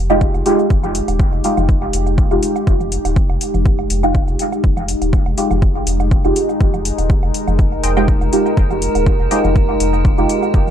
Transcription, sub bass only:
0.00 0.27 F1 medium
0.34 0.42 F1 loud
0.70 1.01 F1 medium
1.08 1.24 D#1 medium
1.33 1.40 F1 medium
1.57 1.87 F1 loud
1.93 2.24 F1 medium
2.31 2.39 F1 loud
2.67 2.98 F1 loud
3.05 3.21 D#1 medium
3.29 3.37 F1 medium
3.54 3.84 F1 loud
3.90 4.21 F1 medium
4.28 4.35 F1 loud
4.64 4.95 F1 medium
5.02 5.17 D#1 medium
5.26 5.34 F1 medium
5.51 5.81 F1 loud
5.87 6.18 F1 medium
6.25 6.32 F1 loud
6.61 6.91 F1 medium
6.98 7.14 D#1 medium
7.23 7.31 F1 medium
7.47 7.77 F1 loud
7.83 8.14 F1 medium
8.21 8.29 F1 loud
8.57 8.88 F1 loud
8.95 9.11 D#1 medium
9.20 9.27 F1 medium
9.44 9.74 F1 loud
9.80 10.11 F1 medium
10.18 10.26 F1 loud
10.54 10.71 F1 loud

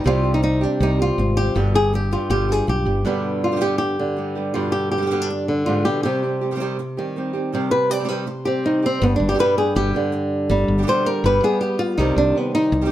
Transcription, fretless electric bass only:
0.06 0.65 C2 medium
0.80 1.10 C2 medium
1.18 1.48 G#1 medium
1.56 2.15 G1 medium
2.30 2.60 G1 medium
2.68 2.85 B1 medium
2.86 3.03 G1 medium
9.02 9.17 G1 medium
9.20 9.35 G1 medium
9.76 9.91 G1 medium
10.50 10.65 G1 loud
10.68 10.83 G1 medium
11.24 11.39 G1 medium
11.98 12.13 C2 medium
12.16 12.32 C2 medium
12.72 12.87 C2 medium

